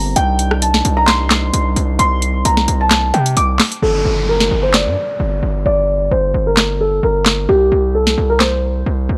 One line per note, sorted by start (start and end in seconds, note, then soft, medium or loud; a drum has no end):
0.00 0.14 G1 loud
0.00 3.79 G3 medium
0.00 0.12 A#3 medium
0.00 0.14 C4 medium
0.00 0.13 A#5 medium
0.16 0.82 C2 loud
0.16 3.79 C3 medium
0.16 1.97 D4 medium
0.16 3.79 D#4 medium
0.16 0.59 G5 medium
0.16 closed hi-hat medium
0.39 closed hi-hat medium
0.51 cross-stick loud
0.62 0.95 A5 medium
0.62 closed hi-hat medium
0.74 snare medium
0.85 1.51 C2 loud
0.85 closed hi-hat medium
0.97 1.07 A#5 medium
1.07 1.95 C6 medium
1.07 snare loud
1.07 clap medium
1.07 closed hi-hat medium
1.30 snare loud
1.30 clap medium
1.30 closed hi-hat medium
1.53 1.75 C2 loud
1.53 closed hi-hat medium
1.76 1.98 C2 loud
1.76 closed hi-hat medium
1.99 2.43 C2 loud
1.99 3.81 C4 medium
1.99 2.42 C6 medium
1.99 closed hi-hat medium
2.22 closed hi-hat medium
2.45 2.67 C2 loud
2.45 2.78 A#5 medium
2.45 closed hi-hat medium
2.57 snare medium
2.68 3.12 C2 loud
2.68 closed hi-hat medium
2.81 3.12 A5 medium
2.91 snare loud
2.91 clap medium
2.91 closed hi-hat medium
3.14 3.36 C3 loud
3.14 3.35 G5 medium
3.14 closed hi-hat soft
3.26 closed hi-hat medium
3.37 3.59 C2 loud
3.37 3.58 D6 medium
3.37 closed hi-hat medium
3.59 snare loud
3.59 clap medium
3.59 closed hi-hat soft
3.59 open hi-hat medium
3.72 closed hi-hat medium
3.82 4.04 G1 loud
3.82 4.26 A4 medium
3.82 downlifter medium
4.05 4.49 G1 loud
4.29 4.62 A#4 medium
4.40 snare medium
4.51 4.88 G1 loud
4.63 4.73 C5 medium
4.74 5.62 D5 medium
4.74 snare loud
4.74 clap medium
4.86 4.96 G2 loud
5.20 5.42 G1 loud
5.43 5.65 G1 loud
5.66 6.10 G1 loud
5.66 6.09 D5 medium
6.11 6.33 G1 loud
6.11 6.44 C5 medium
6.34 7.00 G1 loud
6.47 6.78 A#4 medium
6.57 snare loud
6.57 clap medium
6.81 7.02 A4 medium
7.03 7.47 G1 loud
7.03 7.46 A#4 medium
7.26 snare loud
7.26 clap medium
7.49 7.71 C2 loud
7.49 7.92 G4 medium
7.72 8.16 C2 loud
7.95 8.28 A4 medium
8.07 snare medium
8.18 8.84 C2 loud
8.30 8.40 A#4 medium
8.39 9.18 C5 medium
8.39 snare loud
8.39 clap medium
8.86 9.08 C2 loud
9.09 9.18 C2 loud